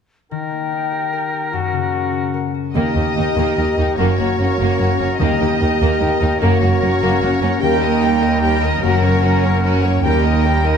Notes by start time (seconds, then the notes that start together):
0.31 D#3 D#4 A#4 G5
0.51 A#3
0.72 D#4
0.92 G4
1.13 A#4
1.33 G4
1.52 F#2 F#4 F#5
1.72 C#3
1.93 C#4
2.13 F#4
2.34 A#4
2.54 F#4
2.75 D#2 D#3 A#3 D#4 G4 A#4 D#5 G5
2.96 D#2 A#3 D#4 G4 A#4 G5
3.16 D#2 A#3 D#4 A#4 G5
3.37 D#2 A#3 D#4 A#4 G5
3.57 D#2 A#3 D#4 G4 A#4 G5
3.77 D#2 A#3 D#4 A#4 G5
3.97 F#1 F#2 A#3 C#4 F#4 A#4 C#5 F#5
4.18 F#1 F#2 A#3 C#4 F#4 A#4 F#5
4.39 F#1 F#2 A#3 C#4 A#4 F#5
4.59 F#1 F#2 A#3 C#4 A#4 F#5
4.79 F#1 F#2 A#3 C#4 F#4 A#4 F#5
4.99 F#1 F#2 A#3 C#4 A#4 F#5
5.19 D#2 D#3 A#3 D#4 G4 A#4 D#5 G5
5.39 D#2 A#3 D#4 G4 A#4 G5
5.60 D#2 A#3 D#4 A#4 G5
5.81 D#2 A#3 D#4 A#4 G5
6.01 D#2 A#3 D#4 G4 A#4 G5
6.20 D#2 A#3 D#4 A#4 G5
6.40 F#1 F#2 A#3 C#4 F#4 A#4 C#5 F#5
6.60 F#1 F#2 A#3 C#4 F#4 A#4 F#5
6.80 F#1 F#2 A#3 C#4 A#4 F#5
7.00 F#1 F#2 A#3 C#4 A#4 F#5
7.21 F#1 F#2 A#3 C#4 F#4 A#4 F#5
7.41 F#1 F#2 A#3 C#4 A#4 F#5
7.60 D#2 D#3 G3 A#3 D#4 G4 A#4 G5
7.81 A#3 A#4 D#5
8.01 G3 D#4 G4 G5
8.22 A#3 A#4 D#5
8.41 G3 D#4 G4 G5
8.63 A#3 A#4 D#5
8.82 F#1 F#2 A#3 C#4 F#4 A#4 F#5
9.02 A#3 A#4 C#5
9.22 C#4 F#4 A#4
9.43 A#3 A#4 C#5
9.63 C#4 F#4 A#4
9.83 A#3 A#4 C#5
10.02 D#2 D#3 G3 A#3 D#4 G4 A#4 G5
10.23 A#3 A#4 D#5
10.44 G3 D#4 G4 G5
10.64 A#3 A#4 D#5